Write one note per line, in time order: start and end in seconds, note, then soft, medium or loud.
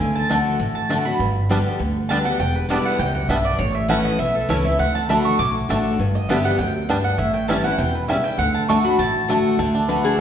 0.00 0.37 D2 medium
0.00 0.28 D3 medium
0.00 0.13 G#5 medium
0.15 0.43 A5 loud
0.29 0.58 D3 medium
0.29 0.58 A3 medium
0.29 0.37 A3 medium
0.29 0.58 D4 loud
0.29 0.33 D4 medium
0.29 0.59 F#4 loud
0.59 0.97 A1 medium
0.59 1.17 A2 medium
0.75 1.03 A5 medium
0.89 1.05 D3 medium
0.89 1.05 A3 medium
0.89 0.97 A3 medium
0.89 1.05 D4 loud
0.89 0.93 D4 medium
0.89 1.04 F#4 loud
1.05 1.20 D4 medium
1.05 1.19 F#4 medium
1.05 1.33 B5 loud
1.19 1.57 G1 loud
1.19 1.77 G2 medium
1.49 1.78 D3 medium
1.49 1.78 G3 loud
1.49 1.57 G3 medium
1.49 1.79 B3 loud
1.49 1.57 B3 medium
1.49 1.57 D4 medium
1.49 1.79 G4 loud
1.79 2.17 D2 medium
1.79 2.08 D3 medium
2.09 2.25 D3 medium
2.09 2.25 G3 loud
2.09 2.17 G3 medium
2.09 2.25 B3 medium
2.09 2.17 B3 medium
2.09 2.17 D4 medium
2.09 2.24 G4 medium
2.09 2.25 A5 loud
2.25 2.40 B3 soft
2.25 2.39 G4 medium
2.25 2.39 F#5 loud
2.40 2.77 E1 loud
2.40 2.97 E2 medium
2.40 2.55 G5 loud
2.56 2.69 B4 medium
2.69 2.98 D3 medium
2.69 2.98 G3 medium
2.69 2.77 G3 medium
2.69 2.98 B3 loud
2.69 2.77 B3 medium
2.69 2.77 D4 medium
2.69 2.98 E4 loud
2.69 2.85 D5 medium
2.85 2.99 F#5 loud
2.99 3.25 C#2 medium
2.99 3.28 F#2 medium
2.99 3.14 G5 loud
3.15 3.29 F#5 loud
3.29 3.54 B1 medium
3.29 3.58 G2 medium
3.29 3.37 G3 medium
3.29 3.37 B3 medium
3.29 3.37 D4 medium
3.29 3.45 E5 medium
3.45 3.59 D5 loud
3.59 3.97 A1 loud
3.59 4.16 A2 medium
3.59 3.74 C#5 medium
3.75 3.89 E5 loud
3.88 4.17 E3 medium
3.88 4.18 A3 loud
3.88 3.97 A3 medium
3.88 4.18 C#4 loud
3.88 3.97 C#4 medium
3.88 4.18 E4 loud
3.88 3.97 E4 medium
3.88 4.05 F#5 loud
4.05 4.19 D#5 loud
4.19 4.44 B1 medium
4.19 4.76 E2 medium
4.19 4.34 E5 loud
4.35 4.49 A4 medium
4.49 4.75 C#2 medium
4.49 4.64 E3 medium
4.49 4.64 A3 medium
4.49 4.56 A3 medium
4.49 4.65 C#4 medium
4.49 4.57 C#4 medium
4.49 4.64 E4 medium
4.49 4.57 E4 medium
4.49 4.64 C#5 medium
4.65 4.79 C#4 soft
4.65 4.79 E4 medium
4.65 4.79 E5 medium
4.79 5.17 D2 medium
4.79 5.08 D3 medium
4.79 4.94 F#5 loud
4.95 5.09 A5 loud
5.09 5.38 D3 medium
5.09 5.38 A3 medium
5.09 5.17 A3 medium
5.09 5.38 D4 loud
5.09 5.12 D4 medium
5.09 5.39 F#4 loud
5.09 5.24 B5 medium
5.25 5.39 C#6 loud
5.39 5.65 B1 medium
5.39 5.96 A2 medium
5.39 5.49 D6 loud
5.69 5.94 A1 medium
5.69 5.98 D3 medium
5.69 5.98 A3 medium
5.69 5.77 A3 medium
5.69 5.98 D4 medium
5.69 5.72 D4 medium
5.69 5.99 F#4 medium
5.99 6.37 G1 loud
5.99 6.56 G2 loud
6.15 6.29 D#5 loud
6.29 6.44 D3 loud
6.29 6.44 G3 loud
6.29 6.37 G3 medium
6.29 6.45 B3 loud
6.29 6.37 B3 medium
6.29 6.37 D4 medium
6.29 6.43 G4 medium
6.29 6.44 E5 medium
6.45 6.59 B3 soft
6.45 6.58 G4 medium
6.45 6.58 F#5 loud
6.58 6.96 D2 medium
6.58 6.88 F#2 medium
6.58 7.01 G5 loud
6.89 7.18 G2 medium
6.89 6.96 G3 medium
6.89 6.96 B3 medium
6.89 6.97 D4 medium
7.04 7.18 F#5 medium
7.18 7.56 A1 loud
7.18 7.76 A2 medium
7.18 7.33 E5 medium
7.34 7.48 G5 loud
7.48 7.64 E3 medium
7.48 7.64 G3 medium
7.48 7.56 G3 medium
7.48 7.64 C#4 loud
7.48 7.56 C#4 medium
7.48 7.63 E4 loud
7.48 7.56 E4 medium
7.48 7.64 A5 loud
7.64 7.79 C#4 medium
7.64 7.78 E4 medium
7.64 7.78 F#5 loud
7.78 8.16 E1 loud
7.78 8.07 B2 medium
7.78 7.94 G5 loud
7.94 8.08 B4 medium
8.08 8.37 C#3 medium
8.08 8.16 G3 medium
8.08 8.16 C#4 medium
8.08 8.16 E4 medium
8.08 8.24 E5 loud
8.24 8.38 G5 loud
8.38 8.76 D2 loud
8.38 8.67 D3 medium
8.38 8.54 F#5 loud
8.55 8.68 A5 loud
8.68 8.84 D3 medium
8.68 8.84 A3 loud
8.68 8.76 A3 medium
8.68 8.85 D4 loud
8.68 8.72 D4 medium
8.68 8.83 F#4 loud
8.68 8.84 C#6 loud
8.84 8.99 D4 soft
8.84 8.98 F#4 medium
8.84 8.98 B5 loud
8.98 9.36 A1 medium
8.98 9.56 A2 medium
8.98 9.41 A5 loud
9.28 9.57 D3 medium
9.28 9.58 A3 loud
9.28 9.36 A3 medium
9.28 9.58 D4 medium
9.28 9.32 D4 medium
9.28 9.58 F#4 loud
9.58 9.96 D2 medium
9.58 9.87 D3 medium
9.58 9.88 A3 medium
9.75 10.04 D4 medium
9.88 10.17 D3 medium
9.88 10.20 A3 medium
9.88 10.18 A3 medium
9.88 10.18 D4 loud
9.88 10.18 F#4 loud
9.88 10.04 B4 medium
10.04 10.18 D4 medium
10.04 10.18 G#4 medium